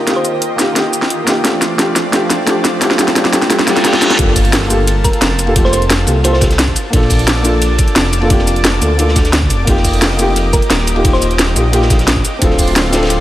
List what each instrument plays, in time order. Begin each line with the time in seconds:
Already playing: analog synth pad A#3 F4 G4 D#5, riser
0.05 felt piano A#3 D#4 F4, snare, closed hi-hat
0.10 felt piano G4
0.16 synth pluck C5
0.25 closed hi-hat, shaker
0.42 closed hi-hat
0.56 felt piano A#3 D#4 F4, snare, closed hi-hat, shaker
0.61 felt piano G4
0.73 felt piano A#3 D#4 F4, snare, closed hi-hat, shaker
0.78 felt piano G4
0.93 closed hi-hat, shaker
1.02 snare
1.10 closed hi-hat
1.24 felt piano A#3 D#4 F4, snare, closed hi-hat, shaker
1.30 felt piano G4
1.42 felt piano A3 D4 F4, analog synth pad C4 D5, snare, closed hi-hat
1.47 felt piano G4
1.62 snare, closed hi-hat, shaker
1.76 felt piano A3 D4 F4, snare, closed hi-hat
1.81 felt piano G4
1.96 snare, closed hi-hat, shaker
2.10 felt piano A3 D4 F4, snare, closed hi-hat, shaker
2.15 felt piano G4
2.30 snare, closed hi-hat, shaker
2.44 felt piano A3 D4 F4, snare, closed hi-hat
2.50 felt piano G4
2.65 snare, closed hi-hat, shaker
2.79 felt piano A3 D4 F4, snare, closed hi-hat
2.84 felt piano G4
2.91 snare
2.96 felt piano A3 D4 F4, snare, closed hi-hat, shaker
3.01 felt piano G4
3.08 snare, closed hi-hat
3.13 felt piano A3 D4 F4, snare, closed hi-hat
3.18 felt piano G4
3.25 snare
3.30 felt piano A3 D4 F4, snare, closed hi-hat, shaker
3.35 felt piano G4
3.42 snare, shaker
3.47 felt piano A3 D4 F4, snare, closed hi-hat, reverse cymbal, shaker
3.52 felt piano G4
3.59 snare
3.64 felt piano A3 D4 F4, snare, closed hi-hat, shaker
3.70 felt piano G4
3.77 snare, closed hi-hat, shaker
3.81 felt piano A3 D4 F4, snare, closed hi-hat
3.87 felt piano G4
3.93 snare
3.99 felt piano A3 D4 F4, snare, closed hi-hat, shaker
4.04 felt piano G4
4.10 snare, closed hi-hat
4.16 detuned saw bass G1, felt piano A#3 F4 G4, analog synth pad A#3 F4 A5, kick, closed hi-hat, ride, impact
4.21 felt piano A4
4.28 snare
4.36 kick, closed hi-hat, open hi-hat, shaker
4.45 closed hi-hat
4.53 snare, closed hi-hat, ride
4.63 snare
4.67 felt piano A#3 F4 G4, closed hi-hat, ride, shaker
4.73 felt piano A4
4.87 closed hi-hat, ride, shaker
5.04 synth pluck A#4, kick, closed hi-hat, ride, shaker
5.13 closed hi-hat
5.21 detuned saw bass F1, snare, closed hi-hat, ride
5.31 snare
5.39 closed hi-hat, ride, shaker
5.46 felt piano A#3 F4 G4 A4, ride
5.53 felt piano A#3 F4 G4, kick, closed hi-hat, ride
5.59 felt piano A4
5.65 synth pluck C5, snare
5.73 synth pluck C5, closed hi-hat, ride, shaker
5.82 closed hi-hat
5.90 snare, closed hi-hat, ride
5.99 ride
6.06 detuned saw bass C2, felt piano A#3 F4 G4 A4, closed hi-hat, ride, shaker
6.23 felt piano A#3 F4 G4 A4, synth pluck C5, closed hi-hat, ride, shaker
6.33 synth pluck C5, snare
6.40 felt piano A#3 G4 A4, kick, snare, closed hi-hat, ride, shaker
6.51 snare, closed hi-hat
6.58 snare, closed hi-hat, ride
6.68 kick
6.76 closed hi-hat, ride, shaker
6.90 detuned saw bass A#1, felt piano A#3 D4 F4, analog synth pad D5 A5 D6, kick, closed hi-hat, ride
6.95 felt piano A4
7.02 snare
7.10 kick, closed hi-hat, open hi-hat, shaker
7.19 closed hi-hat
7.27 snare, closed hi-hat, ride
7.36 snare
7.42 felt piano A#3 D4 F4, closed hi-hat, ride, shaker
7.47 felt piano A4
7.62 closed hi-hat, ride, shaker
7.78 kick, closed hi-hat, ride, shaker
7.88 closed hi-hat
7.95 detuned saw bass F1, snare, closed hi-hat, ride
8.05 snare
8.13 closed hi-hat, ride, shaker
8.21 felt piano A#3 D4 F4 A4, ride
8.27 felt piano A#3 D4 F4, kick, closed hi-hat, ride
8.33 felt piano G4
8.39 snare
8.47 closed hi-hat, ride, shaker
8.56 closed hi-hat
8.64 snare, closed hi-hat, ride
8.74 ride
8.80 detuned saw bass D2, felt piano A#3 D4 F4 A4, closed hi-hat, ride, shaker
8.97 felt piano A#3 D4 F4 A4, closed hi-hat, ride, shaker
9.08 snare
9.16 kick, snare, closed hi-hat, ride, shaker
9.25 snare, closed hi-hat, shaker
9.33 snare, closed hi-hat, ride
9.42 kick
9.50 detuned saw bass F1, closed hi-hat, ride, shaker
9.64 detuned saw bass F1, felt piano A#3 D#4 F4, analog synth pad G4 D#5, kick, closed hi-hat, ride
9.70 felt piano G4
9.77 snare
9.84 kick, closed hi-hat, open hi-hat, shaker
9.93 closed hi-hat
10.02 snare, closed hi-hat, ride
10.11 snare
10.16 felt piano A#3 D#4 F4, closed hi-hat, ride, shaker
10.22 felt piano G4
10.36 closed hi-hat, ride, shaker
10.53 synth pluck A#4, kick, closed hi-hat, ride, shaker
10.62 closed hi-hat
10.70 detuned saw bass D#1, snare, closed hi-hat, ride
10.79 snare
10.87 closed hi-hat, ride, shaker
10.95 felt piano A#3 D#4 F4 G4, ride
11.02 felt piano A#3 D#4 F4, kick, closed hi-hat, ride
11.07 felt piano G4
11.13 synth pluck C5, snare
11.22 closed hi-hat, ride, shaker
11.31 closed hi-hat
11.39 snare, closed hi-hat, ride
11.48 ride
11.54 detuned saw bass A#1, felt piano A#3 D#4 F4 G4, closed hi-hat, ride, shaker
11.71 felt piano A#3 D#4 F4 G4, closed hi-hat, ride, shaker
11.82 snare
11.88 felt piano A#3 D#4 F4 G4, kick, snare, closed hi-hat, ride, shaker
11.99 snare, closed hi-hat
12.08 snare, closed hi-hat, ride
12.16 kick
12.25 closed hi-hat, ride, shaker
12.39 detuned saw bass D1, felt piano C4 D4 F4, analog synth pad F4 D5 C6, kick, closed hi-hat, ride
12.44 felt piano A4
12.51 snare
12.59 kick, closed hi-hat, open hi-hat, shaker
12.68 closed hi-hat
12.76 snare, closed hi-hat, ride
12.85 snare
12.90 felt piano C4 D4 F4, snare, closed hi-hat, ride, shaker
12.96 felt piano A4
13.03 snare, ride
13.06 snare, ride
13.10 closed hi-hat, ride, shaker